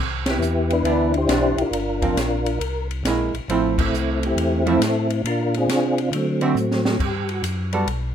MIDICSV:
0, 0, Header, 1, 5, 480
1, 0, Start_track
1, 0, Key_signature, 0, "major"
1, 0, Tempo, 438917
1, 1894, Time_signature, 4, 2, 24, 8
1, 8911, End_track
2, 0, Start_track
2, 0, Title_t, "Tonewheel organ"
2, 0, Program_c, 0, 16
2, 324, Note_on_c, 0, 67, 84
2, 327, Note_on_c, 0, 59, 54
2, 331, Note_on_c, 0, 64, 57
2, 790, Note_off_c, 0, 64, 0
2, 796, Note_on_c, 0, 71, 102
2, 798, Note_on_c, 0, 62, 63
2, 800, Note_off_c, 0, 67, 0
2, 803, Note_on_c, 0, 64, 62
2, 1225, Note_off_c, 0, 59, 0
2, 1230, Note_off_c, 0, 71, 0
2, 1271, Note_off_c, 0, 64, 0
2, 1285, Note_on_c, 0, 64, 71
2, 1285, Note_on_c, 0, 72, 111
2, 1289, Note_on_c, 0, 67, 73
2, 1700, Note_off_c, 0, 62, 0
2, 1715, Note_off_c, 0, 72, 0
2, 1764, Note_on_c, 0, 65, 62
2, 1765, Note_on_c, 0, 70, 79
2, 1772, Note_on_c, 0, 62, 61
2, 1868, Note_off_c, 0, 64, 0
2, 1870, Note_off_c, 0, 67, 0
2, 2828, Note_off_c, 0, 65, 0
2, 2831, Note_off_c, 0, 62, 0
2, 3144, Note_off_c, 0, 70, 0
2, 4157, Note_on_c, 0, 64, 76
2, 4158, Note_on_c, 0, 60, 55
2, 4160, Note_on_c, 0, 57, 55
2, 4590, Note_off_c, 0, 64, 0
2, 4639, Note_off_c, 0, 60, 0
2, 4649, Note_on_c, 0, 67, 88
2, 4652, Note_on_c, 0, 60, 60
2, 4653, Note_on_c, 0, 64, 60
2, 5061, Note_off_c, 0, 57, 0
2, 5077, Note_off_c, 0, 67, 0
2, 5107, Note_off_c, 0, 64, 0
2, 5109, Note_off_c, 0, 60, 0
2, 5119, Note_on_c, 0, 69, 91
2, 5120, Note_on_c, 0, 64, 66
2, 5122, Note_on_c, 0, 60, 68
2, 5551, Note_off_c, 0, 69, 0
2, 5705, Note_off_c, 0, 64, 0
2, 5706, Note_off_c, 0, 60, 0
2, 5759, Note_on_c, 0, 62, 74
2, 5760, Note_on_c, 0, 65, 74
2, 5763, Note_on_c, 0, 70, 98
2, 6073, Note_off_c, 0, 70, 0
2, 6077, Note_off_c, 0, 62, 0
2, 6086, Note_on_c, 0, 60, 64
2, 6090, Note_on_c, 0, 62, 69
2, 6097, Note_on_c, 0, 68, 105
2, 6567, Note_off_c, 0, 68, 0
2, 6571, Note_off_c, 0, 65, 0
2, 6584, Note_on_c, 0, 65, 77
2, 6668, Note_off_c, 0, 60, 0
2, 6670, Note_off_c, 0, 62, 0
2, 6711, Note_off_c, 0, 65, 0
2, 6713, Note_on_c, 0, 54, 55
2, 6718, Note_on_c, 0, 57, 50
2, 6731, Note_on_c, 0, 60, 77
2, 7464, Note_off_c, 0, 60, 0
2, 7619, Note_off_c, 0, 54, 0
2, 7622, Note_off_c, 0, 57, 0
2, 7696, Note_on_c, 0, 67, 70
2, 7981, Note_off_c, 0, 67, 0
2, 7999, Note_on_c, 0, 66, 75
2, 8143, Note_off_c, 0, 66, 0
2, 8911, End_track
3, 0, Start_track
3, 0, Title_t, "Hollow-body jazz guitar"
3, 0, Program_c, 1, 26
3, 930, Note_on_c, 1, 52, 58
3, 941, Note_on_c, 1, 59, 67
3, 949, Note_on_c, 1, 62, 73
3, 1216, Note_off_c, 1, 52, 0
3, 1222, Note_off_c, 1, 59, 0
3, 1225, Note_off_c, 1, 62, 0
3, 1415, Note_on_c, 1, 52, 47
3, 1418, Note_on_c, 1, 59, 49
3, 1421, Note_on_c, 1, 62, 52
3, 1698, Note_off_c, 1, 52, 0
3, 1700, Note_off_c, 1, 59, 0
3, 1701, Note_off_c, 1, 62, 0
3, 2210, Note_on_c, 1, 53, 60
3, 2216, Note_on_c, 1, 58, 60
3, 2221, Note_on_c, 1, 60, 63
3, 2357, Note_off_c, 1, 53, 0
3, 2361, Note_off_c, 1, 58, 0
3, 2363, Note_off_c, 1, 60, 0
3, 3348, Note_on_c, 1, 56, 54
3, 3352, Note_on_c, 1, 58, 56
3, 3358, Note_on_c, 1, 64, 67
3, 3625, Note_off_c, 1, 56, 0
3, 3627, Note_off_c, 1, 58, 0
3, 3630, Note_off_c, 1, 64, 0
3, 3821, Note_on_c, 1, 53, 60
3, 3832, Note_on_c, 1, 57, 61
3, 3833, Note_on_c, 1, 60, 64
3, 3836, Note_on_c, 1, 64, 68
3, 4101, Note_off_c, 1, 53, 0
3, 4107, Note_off_c, 1, 57, 0
3, 4108, Note_off_c, 1, 60, 0
3, 4109, Note_off_c, 1, 64, 0
3, 5098, Note_on_c, 1, 53, 61
3, 5100, Note_on_c, 1, 57, 71
3, 5111, Note_on_c, 1, 60, 68
3, 5117, Note_on_c, 1, 64, 64
3, 5242, Note_off_c, 1, 53, 0
3, 5243, Note_off_c, 1, 57, 0
3, 5248, Note_off_c, 1, 60, 0
3, 5251, Note_off_c, 1, 64, 0
3, 7015, Note_on_c, 1, 50, 62
3, 7019, Note_on_c, 1, 57, 64
3, 7023, Note_on_c, 1, 60, 77
3, 7030, Note_on_c, 1, 66, 76
3, 7160, Note_off_c, 1, 50, 0
3, 7162, Note_off_c, 1, 57, 0
3, 7164, Note_off_c, 1, 60, 0
3, 7167, Note_off_c, 1, 66, 0
3, 8453, Note_on_c, 1, 55, 54
3, 8457, Note_on_c, 1, 59, 57
3, 8460, Note_on_c, 1, 66, 57
3, 8466, Note_on_c, 1, 69, 60
3, 8599, Note_off_c, 1, 55, 0
3, 8601, Note_off_c, 1, 59, 0
3, 8602, Note_off_c, 1, 66, 0
3, 8605, Note_off_c, 1, 69, 0
3, 8911, End_track
4, 0, Start_track
4, 0, Title_t, "Tonewheel organ"
4, 0, Program_c, 2, 16
4, 0, Note_on_c, 2, 36, 70
4, 427, Note_on_c, 2, 40, 83
4, 434, Note_off_c, 2, 36, 0
4, 905, Note_off_c, 2, 40, 0
4, 911, Note_on_c, 2, 38, 75
4, 1387, Note_off_c, 2, 38, 0
4, 1397, Note_on_c, 2, 35, 83
4, 1696, Note_off_c, 2, 35, 0
4, 1709, Note_on_c, 2, 35, 36
4, 1796, Note_off_c, 2, 35, 0
4, 1869, Note_on_c, 2, 31, 75
4, 2347, Note_off_c, 2, 31, 0
4, 2358, Note_on_c, 2, 34, 84
4, 2832, Note_off_c, 2, 34, 0
4, 2839, Note_on_c, 2, 36, 77
4, 3312, Note_off_c, 2, 36, 0
4, 3319, Note_on_c, 2, 34, 81
4, 3620, Note_off_c, 2, 34, 0
4, 3644, Note_on_c, 2, 34, 40
4, 3728, Note_off_c, 2, 34, 0
4, 3808, Note_on_c, 2, 33, 80
4, 4277, Note_off_c, 2, 33, 0
4, 4287, Note_on_c, 2, 36, 90
4, 4756, Note_off_c, 2, 36, 0
4, 4766, Note_on_c, 2, 40, 79
4, 5236, Note_off_c, 2, 40, 0
4, 5245, Note_on_c, 2, 45, 79
4, 5715, Note_off_c, 2, 45, 0
4, 5730, Note_on_c, 2, 46, 76
4, 6197, Note_off_c, 2, 46, 0
4, 6206, Note_on_c, 2, 48, 79
4, 6675, Note_off_c, 2, 48, 0
4, 6691, Note_on_c, 2, 50, 83
4, 7158, Note_off_c, 2, 50, 0
4, 7164, Note_on_c, 2, 45, 85
4, 7634, Note_off_c, 2, 45, 0
4, 7648, Note_on_c, 2, 43, 70
4, 8116, Note_off_c, 2, 43, 0
4, 8122, Note_on_c, 2, 42, 74
4, 8593, Note_off_c, 2, 42, 0
4, 8600, Note_on_c, 2, 35, 73
4, 8911, Note_off_c, 2, 35, 0
4, 8911, End_track
5, 0, Start_track
5, 0, Title_t, "Drums"
5, 283, Note_on_c, 9, 38, 76
5, 285, Note_on_c, 9, 51, 59
5, 392, Note_off_c, 9, 38, 0
5, 394, Note_off_c, 9, 51, 0
5, 457, Note_on_c, 9, 44, 60
5, 567, Note_off_c, 9, 44, 0
5, 770, Note_on_c, 9, 51, 47
5, 880, Note_off_c, 9, 51, 0
5, 931, Note_on_c, 9, 51, 52
5, 1040, Note_off_c, 9, 51, 0
5, 1246, Note_on_c, 9, 51, 40
5, 1355, Note_off_c, 9, 51, 0
5, 1408, Note_on_c, 9, 38, 69
5, 1410, Note_on_c, 9, 44, 58
5, 1410, Note_on_c, 9, 51, 65
5, 1517, Note_off_c, 9, 38, 0
5, 1520, Note_off_c, 9, 44, 0
5, 1520, Note_off_c, 9, 51, 0
5, 1731, Note_on_c, 9, 51, 46
5, 1840, Note_off_c, 9, 51, 0
5, 1895, Note_on_c, 9, 51, 60
5, 2004, Note_off_c, 9, 51, 0
5, 2209, Note_on_c, 9, 36, 65
5, 2212, Note_on_c, 9, 51, 46
5, 2318, Note_off_c, 9, 36, 0
5, 2321, Note_off_c, 9, 51, 0
5, 2374, Note_on_c, 9, 38, 70
5, 2376, Note_on_c, 9, 44, 56
5, 2376, Note_on_c, 9, 51, 68
5, 2483, Note_off_c, 9, 38, 0
5, 2485, Note_off_c, 9, 44, 0
5, 2485, Note_off_c, 9, 51, 0
5, 2693, Note_on_c, 9, 51, 46
5, 2802, Note_off_c, 9, 51, 0
5, 2856, Note_on_c, 9, 51, 60
5, 2965, Note_off_c, 9, 51, 0
5, 3179, Note_on_c, 9, 51, 43
5, 3288, Note_off_c, 9, 51, 0
5, 3336, Note_on_c, 9, 38, 66
5, 3338, Note_on_c, 9, 44, 61
5, 3338, Note_on_c, 9, 51, 66
5, 3445, Note_off_c, 9, 38, 0
5, 3447, Note_off_c, 9, 44, 0
5, 3447, Note_off_c, 9, 51, 0
5, 3658, Note_on_c, 9, 51, 44
5, 3768, Note_off_c, 9, 51, 0
5, 3823, Note_on_c, 9, 51, 57
5, 3932, Note_off_c, 9, 51, 0
5, 4135, Note_on_c, 9, 36, 77
5, 4140, Note_on_c, 9, 49, 72
5, 4244, Note_off_c, 9, 36, 0
5, 4249, Note_off_c, 9, 49, 0
5, 4310, Note_on_c, 9, 44, 54
5, 4419, Note_off_c, 9, 44, 0
5, 4626, Note_on_c, 9, 51, 47
5, 4736, Note_off_c, 9, 51, 0
5, 4788, Note_on_c, 9, 51, 61
5, 4898, Note_off_c, 9, 51, 0
5, 5103, Note_on_c, 9, 51, 44
5, 5213, Note_off_c, 9, 51, 0
5, 5265, Note_on_c, 9, 38, 63
5, 5268, Note_on_c, 9, 44, 51
5, 5268, Note_on_c, 9, 51, 70
5, 5375, Note_off_c, 9, 38, 0
5, 5377, Note_off_c, 9, 44, 0
5, 5377, Note_off_c, 9, 51, 0
5, 5581, Note_on_c, 9, 51, 45
5, 5690, Note_off_c, 9, 51, 0
5, 5747, Note_on_c, 9, 51, 64
5, 5856, Note_off_c, 9, 51, 0
5, 6062, Note_on_c, 9, 51, 45
5, 6172, Note_off_c, 9, 51, 0
5, 6225, Note_on_c, 9, 38, 72
5, 6227, Note_on_c, 9, 44, 54
5, 6227, Note_on_c, 9, 51, 67
5, 6335, Note_off_c, 9, 38, 0
5, 6337, Note_off_c, 9, 44, 0
5, 6337, Note_off_c, 9, 51, 0
5, 6541, Note_on_c, 9, 51, 46
5, 6651, Note_off_c, 9, 51, 0
5, 6702, Note_on_c, 9, 51, 59
5, 6812, Note_off_c, 9, 51, 0
5, 7011, Note_on_c, 9, 51, 41
5, 7120, Note_off_c, 9, 51, 0
5, 7176, Note_on_c, 9, 44, 58
5, 7286, Note_off_c, 9, 44, 0
5, 7341, Note_on_c, 9, 38, 58
5, 7451, Note_off_c, 9, 38, 0
5, 7495, Note_on_c, 9, 38, 82
5, 7604, Note_off_c, 9, 38, 0
5, 7652, Note_on_c, 9, 36, 68
5, 7657, Note_on_c, 9, 49, 62
5, 7761, Note_off_c, 9, 36, 0
5, 7766, Note_off_c, 9, 49, 0
5, 7970, Note_on_c, 9, 51, 42
5, 8079, Note_off_c, 9, 51, 0
5, 8133, Note_on_c, 9, 44, 54
5, 8133, Note_on_c, 9, 51, 68
5, 8242, Note_off_c, 9, 44, 0
5, 8242, Note_off_c, 9, 51, 0
5, 8449, Note_on_c, 9, 51, 44
5, 8559, Note_off_c, 9, 51, 0
5, 8612, Note_on_c, 9, 51, 57
5, 8722, Note_off_c, 9, 51, 0
5, 8911, End_track
0, 0, End_of_file